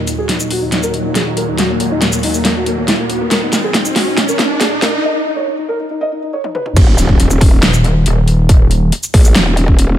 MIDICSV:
0, 0, Header, 1, 8, 480
1, 0, Start_track
1, 0, Key_signature, -6, "minor"
1, 0, Tempo, 431655
1, 1763, Time_signature, 4, 2, 24, 8
1, 11102, End_track
2, 0, Start_track
2, 0, Title_t, "Felt piano"
2, 0, Program_c, 0, 0
2, 82, Note_on_c, 0, 63, 62
2, 157, Note_off_c, 0, 63, 0
2, 203, Note_on_c, 0, 68, 90
2, 277, Note_off_c, 0, 68, 0
2, 321, Note_on_c, 0, 63, 60
2, 397, Note_off_c, 0, 63, 0
2, 443, Note_on_c, 0, 63, 62
2, 517, Note_off_c, 0, 63, 0
2, 562, Note_on_c, 0, 66, 91
2, 637, Note_off_c, 0, 66, 0
2, 684, Note_on_c, 0, 63, 64
2, 757, Note_off_c, 0, 63, 0
2, 802, Note_on_c, 0, 63, 62
2, 877, Note_off_c, 0, 63, 0
2, 923, Note_on_c, 0, 70, 92
2, 997, Note_off_c, 0, 70, 0
2, 1042, Note_on_c, 0, 63, 61
2, 1117, Note_off_c, 0, 63, 0
2, 1164, Note_on_c, 0, 63, 63
2, 1237, Note_off_c, 0, 63, 0
2, 1282, Note_on_c, 0, 68, 87
2, 1357, Note_off_c, 0, 68, 0
2, 1403, Note_on_c, 0, 63, 61
2, 1477, Note_off_c, 0, 63, 0
2, 1522, Note_on_c, 0, 70, 89
2, 1597, Note_off_c, 0, 70, 0
2, 1643, Note_on_c, 0, 63, 62
2, 1717, Note_off_c, 0, 63, 0
2, 1763, Note_on_c, 0, 66, 95
2, 1837, Note_off_c, 0, 66, 0
2, 1884, Note_on_c, 0, 58, 64
2, 1957, Note_off_c, 0, 58, 0
2, 2002, Note_on_c, 0, 58, 63
2, 2077, Note_off_c, 0, 58, 0
2, 2124, Note_on_c, 0, 63, 93
2, 2197, Note_off_c, 0, 63, 0
2, 2243, Note_on_c, 0, 58, 59
2, 2318, Note_off_c, 0, 58, 0
2, 2364, Note_on_c, 0, 58, 62
2, 2437, Note_off_c, 0, 58, 0
2, 2482, Note_on_c, 0, 63, 94
2, 2557, Note_off_c, 0, 63, 0
2, 2603, Note_on_c, 0, 58, 65
2, 2677, Note_off_c, 0, 58, 0
2, 2722, Note_on_c, 0, 58, 65
2, 2797, Note_off_c, 0, 58, 0
2, 2843, Note_on_c, 0, 66, 90
2, 2917, Note_off_c, 0, 66, 0
2, 2962, Note_on_c, 0, 58, 63
2, 3037, Note_off_c, 0, 58, 0
2, 3084, Note_on_c, 0, 58, 63
2, 3157, Note_off_c, 0, 58, 0
2, 3202, Note_on_c, 0, 64, 88
2, 3277, Note_off_c, 0, 64, 0
2, 3323, Note_on_c, 0, 58, 63
2, 3397, Note_off_c, 0, 58, 0
2, 3442, Note_on_c, 0, 66, 87
2, 3517, Note_off_c, 0, 66, 0
2, 3564, Note_on_c, 0, 58, 65
2, 3637, Note_off_c, 0, 58, 0
2, 3683, Note_on_c, 0, 70, 100
2, 3757, Note_off_c, 0, 70, 0
2, 3804, Note_on_c, 0, 63, 63
2, 3877, Note_off_c, 0, 63, 0
2, 3923, Note_on_c, 0, 63, 63
2, 3998, Note_off_c, 0, 63, 0
2, 4044, Note_on_c, 0, 68, 94
2, 4117, Note_off_c, 0, 68, 0
2, 4162, Note_on_c, 0, 63, 60
2, 4237, Note_off_c, 0, 63, 0
2, 4283, Note_on_c, 0, 63, 64
2, 4357, Note_off_c, 0, 63, 0
2, 4402, Note_on_c, 0, 66, 97
2, 4477, Note_off_c, 0, 66, 0
2, 4523, Note_on_c, 0, 63, 63
2, 4597, Note_off_c, 0, 63, 0
2, 4642, Note_on_c, 0, 63, 67
2, 4717, Note_off_c, 0, 63, 0
2, 4763, Note_on_c, 0, 70, 93
2, 4837, Note_off_c, 0, 70, 0
2, 4882, Note_on_c, 0, 63, 63
2, 4957, Note_off_c, 0, 63, 0
2, 5003, Note_on_c, 0, 63, 64
2, 5077, Note_off_c, 0, 63, 0
2, 5122, Note_on_c, 0, 68, 89
2, 5197, Note_off_c, 0, 68, 0
2, 5243, Note_on_c, 0, 63, 65
2, 5317, Note_off_c, 0, 63, 0
2, 5362, Note_on_c, 0, 70, 91
2, 5437, Note_off_c, 0, 70, 0
2, 5484, Note_on_c, 0, 63, 64
2, 5557, Note_off_c, 0, 63, 0
2, 5603, Note_on_c, 0, 75, 98
2, 5678, Note_off_c, 0, 75, 0
2, 5723, Note_on_c, 0, 63, 65
2, 5797, Note_off_c, 0, 63, 0
2, 5843, Note_on_c, 0, 63, 66
2, 5918, Note_off_c, 0, 63, 0
2, 5963, Note_on_c, 0, 73, 95
2, 6037, Note_off_c, 0, 73, 0
2, 6082, Note_on_c, 0, 63, 61
2, 6157, Note_off_c, 0, 63, 0
2, 6204, Note_on_c, 0, 63, 65
2, 6277, Note_off_c, 0, 63, 0
2, 6322, Note_on_c, 0, 70, 97
2, 6397, Note_off_c, 0, 70, 0
2, 6443, Note_on_c, 0, 63, 66
2, 6517, Note_off_c, 0, 63, 0
2, 6562, Note_on_c, 0, 63, 67
2, 6637, Note_off_c, 0, 63, 0
2, 6683, Note_on_c, 0, 75, 96
2, 6757, Note_off_c, 0, 75, 0
2, 6802, Note_on_c, 0, 63, 67
2, 6877, Note_off_c, 0, 63, 0
2, 6923, Note_on_c, 0, 63, 66
2, 6997, Note_off_c, 0, 63, 0
2, 7042, Note_on_c, 0, 73, 90
2, 7117, Note_off_c, 0, 73, 0
2, 7163, Note_on_c, 0, 63, 64
2, 7237, Note_off_c, 0, 63, 0
2, 7282, Note_on_c, 0, 71, 89
2, 7357, Note_off_c, 0, 71, 0
2, 7404, Note_on_c, 0, 63, 67
2, 7477, Note_off_c, 0, 63, 0
2, 11102, End_track
3, 0, Start_track
3, 0, Title_t, "Supersaw synth"
3, 0, Program_c, 1, 81
3, 0, Note_on_c, 1, 39, 83
3, 0, Note_on_c, 1, 46, 74
3, 0, Note_on_c, 1, 54, 93
3, 5558, Note_off_c, 1, 39, 0
3, 5558, Note_off_c, 1, 46, 0
3, 5558, Note_off_c, 1, 54, 0
3, 11102, End_track
4, 0, Start_track
4, 0, Title_t, "Wobble bass"
4, 0, Program_c, 2, 39
4, 7522, Note_on_c, 2, 27, 101
4, 8463, Note_off_c, 2, 27, 0
4, 10163, Note_on_c, 2, 34, 96
4, 10383, Note_off_c, 2, 34, 0
4, 10403, Note_on_c, 2, 27, 98
4, 11102, Note_off_c, 2, 27, 0
4, 11102, End_track
5, 0, Start_track
5, 0, Title_t, "Wobble bass"
5, 0, Program_c, 3, 39
5, 8482, Note_on_c, 3, 27, 95
5, 8943, Note_off_c, 3, 27, 0
5, 8962, Note_on_c, 3, 27, 99
5, 9903, Note_off_c, 3, 27, 0
5, 11102, End_track
6, 0, Start_track
6, 0, Title_t, "Impact"
6, 0, Program_c, 4, 103
6, 7522, Note_on_c, 4, 60, 76
6, 9442, Note_off_c, 4, 60, 0
6, 11102, End_track
7, 0, Start_track
7, 0, Title_t, "Riser"
7, 0, Program_c, 5, 103
7, 0, Note_on_c, 5, 60, 77
7, 5602, Note_off_c, 5, 60, 0
7, 11102, End_track
8, 0, Start_track
8, 0, Title_t, "Drums"
8, 82, Note_on_c, 9, 42, 53
8, 82, Note_on_c, 9, 82, 57
8, 193, Note_off_c, 9, 42, 0
8, 193, Note_off_c, 9, 82, 0
8, 322, Note_on_c, 9, 38, 52
8, 322, Note_on_c, 9, 42, 83
8, 433, Note_off_c, 9, 38, 0
8, 433, Note_off_c, 9, 42, 0
8, 443, Note_on_c, 9, 82, 73
8, 554, Note_off_c, 9, 82, 0
8, 562, Note_on_c, 9, 46, 95
8, 673, Note_off_c, 9, 46, 0
8, 802, Note_on_c, 9, 38, 52
8, 802, Note_on_c, 9, 42, 83
8, 913, Note_off_c, 9, 38, 0
8, 913, Note_off_c, 9, 42, 0
8, 923, Note_on_c, 9, 82, 58
8, 1034, Note_off_c, 9, 82, 0
8, 1042, Note_on_c, 9, 42, 52
8, 1153, Note_off_c, 9, 42, 0
8, 1282, Note_on_c, 9, 38, 54
8, 1282, Note_on_c, 9, 42, 79
8, 1393, Note_off_c, 9, 38, 0
8, 1393, Note_off_c, 9, 42, 0
8, 1522, Note_on_c, 9, 42, 55
8, 1633, Note_off_c, 9, 42, 0
8, 1762, Note_on_c, 9, 38, 59
8, 1762, Note_on_c, 9, 42, 82
8, 1873, Note_off_c, 9, 38, 0
8, 1873, Note_off_c, 9, 42, 0
8, 2002, Note_on_c, 9, 42, 56
8, 2113, Note_off_c, 9, 42, 0
8, 2242, Note_on_c, 9, 38, 64
8, 2242, Note_on_c, 9, 42, 83
8, 2353, Note_off_c, 9, 38, 0
8, 2353, Note_off_c, 9, 42, 0
8, 2363, Note_on_c, 9, 82, 73
8, 2474, Note_off_c, 9, 82, 0
8, 2482, Note_on_c, 9, 46, 92
8, 2593, Note_off_c, 9, 46, 0
8, 2603, Note_on_c, 9, 82, 58
8, 2714, Note_off_c, 9, 82, 0
8, 2722, Note_on_c, 9, 38, 66
8, 2722, Note_on_c, 9, 42, 83
8, 2833, Note_off_c, 9, 38, 0
8, 2833, Note_off_c, 9, 42, 0
8, 2962, Note_on_c, 9, 42, 55
8, 3073, Note_off_c, 9, 42, 0
8, 3202, Note_on_c, 9, 38, 70
8, 3202, Note_on_c, 9, 42, 80
8, 3313, Note_off_c, 9, 38, 0
8, 3313, Note_off_c, 9, 42, 0
8, 3442, Note_on_c, 9, 42, 54
8, 3553, Note_off_c, 9, 42, 0
8, 3683, Note_on_c, 9, 38, 75
8, 3683, Note_on_c, 9, 42, 81
8, 3794, Note_off_c, 9, 38, 0
8, 3794, Note_off_c, 9, 42, 0
8, 3922, Note_on_c, 9, 38, 75
8, 3922, Note_on_c, 9, 42, 54
8, 3922, Note_on_c, 9, 82, 61
8, 4034, Note_off_c, 9, 38, 0
8, 4034, Note_off_c, 9, 42, 0
8, 4034, Note_off_c, 9, 82, 0
8, 4162, Note_on_c, 9, 38, 80
8, 4162, Note_on_c, 9, 42, 81
8, 4273, Note_off_c, 9, 38, 0
8, 4273, Note_off_c, 9, 42, 0
8, 4284, Note_on_c, 9, 82, 76
8, 4395, Note_off_c, 9, 82, 0
8, 4402, Note_on_c, 9, 38, 81
8, 4402, Note_on_c, 9, 46, 91
8, 4513, Note_off_c, 9, 38, 0
8, 4513, Note_off_c, 9, 46, 0
8, 4643, Note_on_c, 9, 38, 83
8, 4643, Note_on_c, 9, 42, 81
8, 4754, Note_off_c, 9, 38, 0
8, 4754, Note_off_c, 9, 42, 0
8, 4764, Note_on_c, 9, 82, 58
8, 4875, Note_off_c, 9, 82, 0
8, 4883, Note_on_c, 9, 38, 83
8, 4883, Note_on_c, 9, 42, 54
8, 4994, Note_off_c, 9, 38, 0
8, 4994, Note_off_c, 9, 42, 0
8, 5122, Note_on_c, 9, 38, 84
8, 5122, Note_on_c, 9, 42, 81
8, 5234, Note_off_c, 9, 38, 0
8, 5234, Note_off_c, 9, 42, 0
8, 5362, Note_on_c, 9, 38, 91
8, 5362, Note_on_c, 9, 42, 56
8, 5473, Note_off_c, 9, 38, 0
8, 5473, Note_off_c, 9, 42, 0
8, 7163, Note_on_c, 9, 48, 52
8, 7274, Note_off_c, 9, 48, 0
8, 7282, Note_on_c, 9, 47, 79
8, 7393, Note_off_c, 9, 47, 0
8, 7403, Note_on_c, 9, 45, 81
8, 7515, Note_off_c, 9, 45, 0
8, 7522, Note_on_c, 9, 36, 117
8, 7522, Note_on_c, 9, 42, 84
8, 7522, Note_on_c, 9, 49, 102
8, 7633, Note_off_c, 9, 36, 0
8, 7633, Note_off_c, 9, 42, 0
8, 7633, Note_off_c, 9, 49, 0
8, 7762, Note_on_c, 9, 42, 55
8, 7762, Note_on_c, 9, 82, 59
8, 7874, Note_off_c, 9, 42, 0
8, 7874, Note_off_c, 9, 82, 0
8, 7883, Note_on_c, 9, 36, 59
8, 7995, Note_off_c, 9, 36, 0
8, 8002, Note_on_c, 9, 42, 86
8, 8113, Note_off_c, 9, 42, 0
8, 8123, Note_on_c, 9, 82, 77
8, 8234, Note_off_c, 9, 82, 0
8, 8242, Note_on_c, 9, 36, 108
8, 8242, Note_on_c, 9, 46, 99
8, 8353, Note_off_c, 9, 46, 0
8, 8354, Note_off_c, 9, 36, 0
8, 8482, Note_on_c, 9, 38, 117
8, 8482, Note_on_c, 9, 42, 82
8, 8593, Note_off_c, 9, 38, 0
8, 8593, Note_off_c, 9, 42, 0
8, 8603, Note_on_c, 9, 82, 60
8, 8715, Note_off_c, 9, 82, 0
8, 8722, Note_on_c, 9, 42, 55
8, 8834, Note_off_c, 9, 42, 0
8, 8962, Note_on_c, 9, 42, 82
8, 9073, Note_off_c, 9, 42, 0
8, 9202, Note_on_c, 9, 42, 56
8, 9313, Note_off_c, 9, 42, 0
8, 9442, Note_on_c, 9, 36, 123
8, 9442, Note_on_c, 9, 42, 85
8, 9553, Note_off_c, 9, 42, 0
8, 9554, Note_off_c, 9, 36, 0
8, 9682, Note_on_c, 9, 42, 57
8, 9793, Note_off_c, 9, 42, 0
8, 9922, Note_on_c, 9, 42, 84
8, 10034, Note_off_c, 9, 42, 0
8, 10043, Note_on_c, 9, 82, 75
8, 10155, Note_off_c, 9, 82, 0
8, 10162, Note_on_c, 9, 36, 114
8, 10162, Note_on_c, 9, 46, 94
8, 10274, Note_off_c, 9, 36, 0
8, 10274, Note_off_c, 9, 46, 0
8, 10284, Note_on_c, 9, 82, 58
8, 10395, Note_off_c, 9, 82, 0
8, 10402, Note_on_c, 9, 38, 125
8, 10402, Note_on_c, 9, 42, 83
8, 10514, Note_off_c, 9, 38, 0
8, 10514, Note_off_c, 9, 42, 0
8, 10642, Note_on_c, 9, 42, 54
8, 10754, Note_off_c, 9, 42, 0
8, 10764, Note_on_c, 9, 36, 61
8, 10875, Note_off_c, 9, 36, 0
8, 10882, Note_on_c, 9, 42, 83
8, 10994, Note_off_c, 9, 42, 0
8, 11102, End_track
0, 0, End_of_file